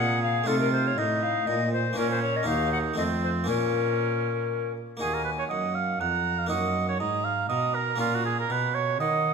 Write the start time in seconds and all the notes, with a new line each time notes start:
Already playing: C#4 F4
0.00 A#2 G#4 F#5
0.22 F5
0.44 C3 A3 D#4 F4 A4
0.49 C3
0.60 A#4
0.72 C5
0.87 C#5
0.97 A2 D#4 D#5
1.23 F5
1.47 A#2 D#5
1.73 C5
1.93 A#3 C#4 F4 A#4
1.97 A#2 C#4
2.11 C5
2.22 C#5
2.36 D#5
2.43 A#3 D#4 F#4 F5
2.47 D#2 D#4
2.72 F#5
2.94 F2 A3 C4 F4 D#5
2.98 F2 C4
3.23 C5
3.44 A#3 C#4 F4 A#4
3.48 A#2 C#4
4.97 A#3 D#4 F#4 G#4 G#5
5.01 D#2
5.14 A#4
5.25 B4
5.39 C#5
5.50 F#2 D#5 F#5
5.75 F5
6.00 F2 F#5 A#5
6.39 F5
6.46 F#2 A#3 D#4 F#4 D#5
6.51 F#2 F#5
6.89 C#5
7.00 G#2 D#5 A#5
7.24 F5
7.49 B2 D#5 A#5
7.75 A#4
7.96 A#2 A#3 C#4 F4
8.00 A#2 F4
8.15 F#4
8.25 G#4
8.40 A#4
8.50 B2 B4
8.75 C#5
9.00 D#3 D#5 F#5